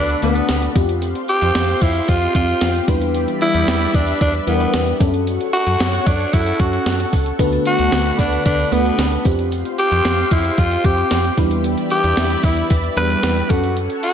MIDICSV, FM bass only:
0, 0, Header, 1, 2, 480
1, 0, Start_track
1, 0, Tempo, 530973
1, 922, Time_signature, 4, 2, 24, 8
1, 12776, End_track
2, 0, Start_track
2, 0, Title_t, "FM bass"
2, 0, Program_c, 0, 39
2, 0, Note_on_c, 0, 38, 105
2, 138, Note_off_c, 0, 38, 0
2, 204, Note_on_c, 0, 38, 100
2, 376, Note_off_c, 0, 38, 0
2, 444, Note_on_c, 0, 38, 98
2, 616, Note_off_c, 0, 38, 0
2, 683, Note_on_c, 0, 41, 97
2, 1029, Note_off_c, 0, 41, 0
2, 1283, Note_on_c, 0, 41, 109
2, 1369, Note_off_c, 0, 41, 0
2, 1403, Note_on_c, 0, 41, 103
2, 1576, Note_off_c, 0, 41, 0
2, 1642, Note_on_c, 0, 41, 96
2, 1815, Note_off_c, 0, 41, 0
2, 1886, Note_on_c, 0, 41, 98
2, 2058, Note_off_c, 0, 41, 0
2, 2124, Note_on_c, 0, 41, 99
2, 2296, Note_off_c, 0, 41, 0
2, 2363, Note_on_c, 0, 41, 92
2, 2535, Note_off_c, 0, 41, 0
2, 2604, Note_on_c, 0, 40, 101
2, 2949, Note_off_c, 0, 40, 0
2, 3203, Note_on_c, 0, 40, 95
2, 3289, Note_off_c, 0, 40, 0
2, 3324, Note_on_c, 0, 40, 99
2, 3496, Note_off_c, 0, 40, 0
2, 3564, Note_on_c, 0, 40, 97
2, 3736, Note_off_c, 0, 40, 0
2, 3807, Note_on_c, 0, 40, 97
2, 3978, Note_off_c, 0, 40, 0
2, 4042, Note_on_c, 0, 40, 97
2, 4215, Note_off_c, 0, 40, 0
2, 4283, Note_on_c, 0, 40, 104
2, 4456, Note_off_c, 0, 40, 0
2, 4523, Note_on_c, 0, 42, 107
2, 4869, Note_off_c, 0, 42, 0
2, 5123, Note_on_c, 0, 42, 96
2, 5209, Note_off_c, 0, 42, 0
2, 5243, Note_on_c, 0, 42, 106
2, 5416, Note_off_c, 0, 42, 0
2, 5483, Note_on_c, 0, 42, 92
2, 5656, Note_off_c, 0, 42, 0
2, 5727, Note_on_c, 0, 42, 104
2, 5898, Note_off_c, 0, 42, 0
2, 5963, Note_on_c, 0, 42, 99
2, 6135, Note_off_c, 0, 42, 0
2, 6201, Note_on_c, 0, 42, 92
2, 6374, Note_off_c, 0, 42, 0
2, 6445, Note_on_c, 0, 37, 91
2, 6617, Note_off_c, 0, 37, 0
2, 6683, Note_on_c, 0, 38, 103
2, 6855, Note_off_c, 0, 38, 0
2, 7044, Note_on_c, 0, 38, 101
2, 7130, Note_off_c, 0, 38, 0
2, 7164, Note_on_c, 0, 38, 101
2, 7336, Note_off_c, 0, 38, 0
2, 7402, Note_on_c, 0, 38, 95
2, 7575, Note_off_c, 0, 38, 0
2, 7645, Note_on_c, 0, 38, 102
2, 7817, Note_off_c, 0, 38, 0
2, 7882, Note_on_c, 0, 38, 94
2, 8055, Note_off_c, 0, 38, 0
2, 8119, Note_on_c, 0, 38, 101
2, 8293, Note_off_c, 0, 38, 0
2, 8364, Note_on_c, 0, 41, 93
2, 8709, Note_off_c, 0, 41, 0
2, 8964, Note_on_c, 0, 41, 107
2, 9050, Note_off_c, 0, 41, 0
2, 9084, Note_on_c, 0, 41, 107
2, 9256, Note_off_c, 0, 41, 0
2, 9324, Note_on_c, 0, 41, 99
2, 9496, Note_off_c, 0, 41, 0
2, 9565, Note_on_c, 0, 41, 101
2, 9737, Note_off_c, 0, 41, 0
2, 9804, Note_on_c, 0, 41, 106
2, 9976, Note_off_c, 0, 41, 0
2, 10046, Note_on_c, 0, 41, 98
2, 10218, Note_off_c, 0, 41, 0
2, 10284, Note_on_c, 0, 40, 96
2, 10629, Note_off_c, 0, 40, 0
2, 10883, Note_on_c, 0, 40, 90
2, 10969, Note_off_c, 0, 40, 0
2, 11003, Note_on_c, 0, 40, 105
2, 11176, Note_off_c, 0, 40, 0
2, 11242, Note_on_c, 0, 40, 100
2, 11415, Note_off_c, 0, 40, 0
2, 11485, Note_on_c, 0, 40, 102
2, 11657, Note_off_c, 0, 40, 0
2, 11721, Note_on_c, 0, 40, 98
2, 11895, Note_off_c, 0, 40, 0
2, 11961, Note_on_c, 0, 40, 105
2, 12134, Note_off_c, 0, 40, 0
2, 12205, Note_on_c, 0, 42, 110
2, 12549, Note_off_c, 0, 42, 0
2, 12776, End_track
0, 0, End_of_file